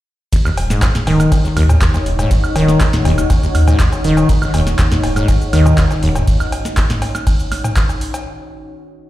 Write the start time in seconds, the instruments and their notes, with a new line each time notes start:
0.32 acid bass D#2, ambient pad D#4, kick, closed hi-hat, ride, shaker
0.40 ambient pad C#5
0.45 acid bass D#2, high woodblock, shaker
0.57 sub bass D#1, closed hi-hat, open hi-hat, cowbell
0.70 acid bass G#2, snare, shaker
0.82 acid bass D#2, kick, snare, clap, closed hi-hat, ride, cowbell, shaker
0.95 snare, closed hi-hat, mid tom, shaker
1.07 sub bass D#1, acid bass D#3, open hi-hat, cowbell
1.17 ambient pad F#5, snare, closed hi-hat, high woodblock, shaker
1.32 acid bass D#2, kick, closed hi-hat, ride, cowbell, shaker
1.45 acid bass C#2, closed hi-hat, shaker
1.57 sub bass D#2, acid bass D#2, snare, closed hi-hat, open hi-hat, high woodblock
1.69 closed hi-hat, mid tom, cowbell, shaker
1.81 acid bass D#2, kick, snare, clap, closed hi-hat, ride, shaker
1.94 acid bass D#2, snare, closed hi-hat, cowbell, shaker
2.06 sub bass D#1, closed hi-hat, open hi-hat
2.19 acid bass G#2, snare, closed hi-hat, mid tom, cowbell, shaker
2.31 acid bass D#2, kick, closed hi-hat, ride, shaker
2.44 high woodblock, shaker
2.56 sub bass D#1, acid bass D#3, closed hi-hat, open hi-hat, cowbell
2.68 snare, shaker
2.80 acid bass D#2, kick, snare, clap, closed hi-hat, ride, cowbell, shaker
2.93 acid bass C#2, snare, closed hi-hat, mid tom, shaker
3.05 sub bass D#1, acid bass D#2, closed hi-hat, open hi-hat, cowbell
3.18 snare, closed hi-hat, high woodblock, shaker
3.30 acid bass D#2, kick, closed hi-hat, ride, cowbell, shaker
3.43 acid bass D#2, shaker
3.55 sub bass D#2, snare, closed hi-hat, open hi-hat, high woodblock
3.67 acid bass G#2, snare, closed hi-hat, mid tom, cowbell, shaker
3.79 acid bass D#2, kick, snare, clap, closed hi-hat, ride, shaker
3.92 closed hi-hat, cowbell, shaker
4.04 sub bass D#1, acid bass D#3, closed hi-hat, open hi-hat
4.17 snare, closed hi-hat, cowbell, shaker
4.29 acid bass D#2, kick, closed hi-hat, ride, shaker
4.42 acid bass C#2, high woodblock, shaker
4.54 sub bass D#1, acid bass D#2, closed hi-hat, open hi-hat, cowbell
4.67 snare, shaker
4.79 acid bass D#2, kick, snare, clap, closed hi-hat, ride, cowbell, shaker
4.91 acid bass D#2, snare, closed hi-hat, mid tom, shaker
5.03 sub bass D#1, open hi-hat, cowbell
5.16 acid bass G#2, snare, closed hi-hat, high woodblock, shaker
5.28 acid bass D#2, kick, closed hi-hat, ride, cowbell, shaker
5.41 closed hi-hat, shaker
5.53 sub bass D#2, acid bass D#3, snare, closed hi-hat, open hi-hat, high woodblock
5.66 closed hi-hat, mid tom, cowbell, shaker
5.78 acid bass D#2, kick, snare, clap, closed hi-hat, ride, shaker
5.91 acid bass C#2, snare, closed hi-hat, cowbell, shaker
6.03 sub bass D#1, acid bass D#2, closed hi-hat, open hi-hat
6.15 snare, closed hi-hat, mid tom, cowbell, shaker
6.27 kick, closed hi-hat, ride, shaker
6.40 closed hi-hat, high woodblock, shaker
6.52 open hi-hat, cowbell
6.65 snare, shaker
6.77 kick, clap, closed hi-hat, ride, cowbell, shaker
6.90 snare, closed hi-hat, mid tom, shaker
7.02 open hi-hat, cowbell
7.15 snare, closed hi-hat, high woodblock, shaker
7.27 kick, closed hi-hat, ride, cowbell, shaker
7.40 closed hi-hat, shaker
7.52 snare, open hi-hat, high woodblock
7.64 closed hi-hat, mid tom, cowbell, shaker
7.76 kick, clap, closed hi-hat, ride, shaker
7.89 closed hi-hat, cowbell, shaker
8.01 open hi-hat
8.14 closed hi-hat, cowbell, shaker